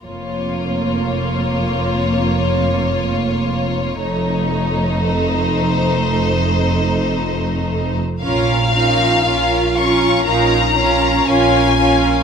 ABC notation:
X:1
M:4/4
L:1/8
Q:1/4=59
K:Bbm
V:1 name="Violin section"
d8- | d2 c6 | f3 d' b2 a2 |]
V:2 name="Violin section"
F8 | E8 | [Bf] [Bf] [Bf] [Bf] [Bf] [Bf] [Bf] [Bf] |]
V:3 name="Cello section"
F,,8 | F,,8 | D E F2 E D3 |]
V:4 name="Viola section"
B,8 | =A,8 | [DF] [DF] [DF] [DF] [DF] [DF] [DF] [DF] |]
V:5 name="Double bass section" clef=bass
F,,,8 | F,,,8 | B,,,2 B,,,2 B,,,2 B,,,2 |]